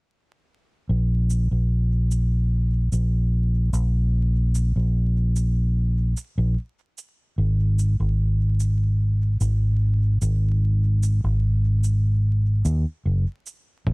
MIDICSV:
0, 0, Header, 1, 3, 480
1, 0, Start_track
1, 0, Tempo, 810811
1, 530, Time_signature, 4, 2, 24, 8
1, 8248, End_track
2, 0, Start_track
2, 0, Title_t, "Fingered electric bass"
2, 0, Program_c, 0, 33
2, 529, Note_on_c, 0, 34, 82
2, 871, Note_off_c, 0, 34, 0
2, 896, Note_on_c, 0, 34, 74
2, 1708, Note_off_c, 0, 34, 0
2, 1731, Note_on_c, 0, 34, 77
2, 2188, Note_off_c, 0, 34, 0
2, 2208, Note_on_c, 0, 34, 83
2, 2791, Note_off_c, 0, 34, 0
2, 2818, Note_on_c, 0, 34, 75
2, 3629, Note_off_c, 0, 34, 0
2, 3775, Note_on_c, 0, 34, 93
2, 3876, Note_off_c, 0, 34, 0
2, 4368, Note_on_c, 0, 32, 86
2, 4711, Note_off_c, 0, 32, 0
2, 4735, Note_on_c, 0, 32, 74
2, 5547, Note_off_c, 0, 32, 0
2, 5569, Note_on_c, 0, 32, 79
2, 6027, Note_off_c, 0, 32, 0
2, 6048, Note_on_c, 0, 32, 90
2, 6631, Note_off_c, 0, 32, 0
2, 6655, Note_on_c, 0, 32, 79
2, 7467, Note_off_c, 0, 32, 0
2, 7489, Note_on_c, 0, 39, 85
2, 7600, Note_off_c, 0, 39, 0
2, 7729, Note_on_c, 0, 30, 88
2, 7840, Note_off_c, 0, 30, 0
2, 8209, Note_on_c, 0, 34, 84
2, 8248, Note_off_c, 0, 34, 0
2, 8248, End_track
3, 0, Start_track
3, 0, Title_t, "Drums"
3, 770, Note_on_c, 9, 82, 46
3, 829, Note_off_c, 9, 82, 0
3, 1251, Note_on_c, 9, 82, 49
3, 1310, Note_off_c, 9, 82, 0
3, 1732, Note_on_c, 9, 82, 45
3, 1791, Note_off_c, 9, 82, 0
3, 2211, Note_on_c, 9, 82, 46
3, 2270, Note_off_c, 9, 82, 0
3, 2693, Note_on_c, 9, 82, 49
3, 2752, Note_off_c, 9, 82, 0
3, 3173, Note_on_c, 9, 82, 48
3, 3233, Note_off_c, 9, 82, 0
3, 3652, Note_on_c, 9, 82, 49
3, 3712, Note_off_c, 9, 82, 0
3, 4131, Note_on_c, 9, 82, 48
3, 4190, Note_off_c, 9, 82, 0
3, 4610, Note_on_c, 9, 82, 49
3, 4669, Note_off_c, 9, 82, 0
3, 5091, Note_on_c, 9, 82, 48
3, 5150, Note_off_c, 9, 82, 0
3, 5569, Note_on_c, 9, 82, 47
3, 5629, Note_off_c, 9, 82, 0
3, 6048, Note_on_c, 9, 82, 48
3, 6108, Note_off_c, 9, 82, 0
3, 6529, Note_on_c, 9, 82, 48
3, 6588, Note_off_c, 9, 82, 0
3, 7008, Note_on_c, 9, 82, 47
3, 7067, Note_off_c, 9, 82, 0
3, 7490, Note_on_c, 9, 82, 46
3, 7549, Note_off_c, 9, 82, 0
3, 7971, Note_on_c, 9, 82, 48
3, 8030, Note_off_c, 9, 82, 0
3, 8209, Note_on_c, 9, 36, 95
3, 8248, Note_off_c, 9, 36, 0
3, 8248, End_track
0, 0, End_of_file